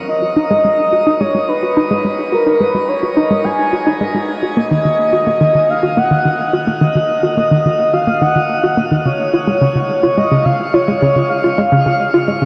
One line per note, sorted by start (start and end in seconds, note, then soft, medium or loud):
0.08 1.22 D#5 loud
0.22 0.32 F#4 medium
0.37 0.50 D#4 loud
0.51 0.60 G#3 loud
0.65 0.70 G#3 medium
0.93 1.02 F#4 medium
1.07 1.20 D#4 medium
1.20 1.30 G#3 medium
1.20 1.50 C#5 medium
1.35 1.41 G#3 medium
1.49 2.05 B4 medium
1.63 1.72 F#4 medium
1.77 1.90 D#4 medium
1.91 2.00 G#3 loud
2.05 2.10 G#3 medium
2.32 2.42 F#4 medium
2.32 2.62 A#4 medium
2.46 2.60 D#4 medium
2.60 2.70 G#3 loud
2.60 2.90 B4 medium
2.75 2.81 G#3 medium
2.88 3.16 C#5 medium
3.03 3.13 F#4 medium
3.17 3.30 D#4 medium
3.17 3.46 D#5 medium
3.31 3.40 G#3 loud
3.44 3.51 G#3 medium
3.44 4.29 G#5 loud
3.73 3.82 F#4 medium
3.86 4.00 D#4 loud
4.01 4.11 G#3 medium
4.14 4.21 G#3 medium
4.43 4.53 F#4 medium
4.57 4.70 A#3 loud
4.57 5.71 D#5 loud
4.71 4.81 D#3 medium
4.85 4.91 D#3 medium
5.13 5.23 F#4 loud
5.27 5.40 A#3 loud
5.41 5.51 D#3 loud
5.55 5.61 D#3 medium
5.70 6.00 F5 loud
5.83 5.93 F#4 loud
5.97 6.11 A#3 loud
5.97 6.54 F#5 loud
6.11 6.21 D#3 medium
6.25 6.31 D#3 medium
6.53 6.63 F#4 medium
6.67 6.81 A#3 medium
6.81 6.91 D#3 loud
6.81 7.95 D#5 medium
6.95 7.01 D#3 medium
7.23 7.33 F#4 loud
7.38 7.51 A#3 loud
7.51 7.61 D#3 medium
7.66 7.71 D#3 medium
7.93 8.03 F#4 medium
7.93 8.23 F5 loud
8.07 8.21 A#3 loud
8.21 8.31 D#3 loud
8.21 8.78 F#5 loud
8.36 8.41 D#3 medium
8.64 8.73 F#4 loud
8.77 8.91 A#3 loud
8.91 9.01 D#3 medium
9.05 9.11 C#3 medium
9.05 10.19 C#5 loud
9.34 9.43 F4 medium
9.47 9.61 G#3 loud
9.61 9.71 C#3 loud
9.75 9.81 C#3 medium
10.03 10.13 F4 medium
10.18 10.31 G#3 medium
10.18 10.47 D#5 loud
10.32 10.41 C#3 loud
10.45 10.52 C#3 medium
10.45 10.75 F5 loud
10.73 10.84 F4 loud
10.73 11.29 C#5 medium
10.88 11.01 G#3 loud
11.02 11.12 C#3 loud
11.16 11.22 C#3 medium
11.30 12.45 F5 loud
11.44 11.54 F4 medium
11.58 11.71 G#3 medium
11.72 11.82 C#3 medium
11.86 11.92 C#3 medium
12.14 12.24 F4 loud
12.28 12.41 G#3 medium
12.42 12.45 C#3 loud